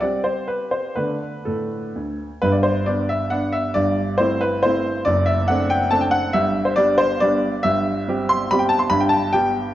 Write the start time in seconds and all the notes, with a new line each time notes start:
0.01 G3 C4 G4 D5
0.24 C5
0.48 B4
0.71 C5
0.95 D3 A3 D4 B4
1.45 A2 A4
1.96 D2
2.42 G1 G2 B4
2.52 D5
2.63 C5
2.86 B3 D4 D5
3.09 E5
3.30 B3 D4 F#5
3.52 E5
3.74 G1 G2 D5
4.18 A3 C4 E4 C5
4.41 B4
4.63 A3 C4 E4 C5
5.05 F#1 F#2 D5
5.26 E5
5.48 A3 C4 D4 F#5
5.70 G5
5.91 A3 C4 D4 A5
6.01 G5
6.11 F#5
6.33 G1 G2 E5
6.65 C5
6.76 G3 B3 D4 D5
6.98 C5
7.20 G3 B3 D4 D5
7.63 G1 G2 E5
8.08 G3 C4 G4
8.29 C6
8.51 G3 C4 G4 B5
8.59 G5
8.69 A5
8.79 C6
8.90 G1 G2 B5
9.00 G5
9.09 A5
9.33 G3 B3 G4 G5